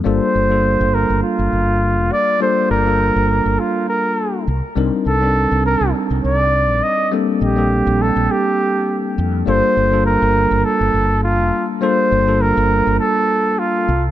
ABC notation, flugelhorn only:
X:1
M:4/4
L:1/16
Q:"Swing 16ths" 1/4=102
K:Gm
V:1 name="Flugelhorn"
c6 B2 F6 d2 | c2 B6 F2 B4 z2 | z2 A4 B2 z2 d4 e2 | z2 G4 A2 G6 z2 |
c4 B4 A4 F3 z | c4 B4 A4 F3 z |]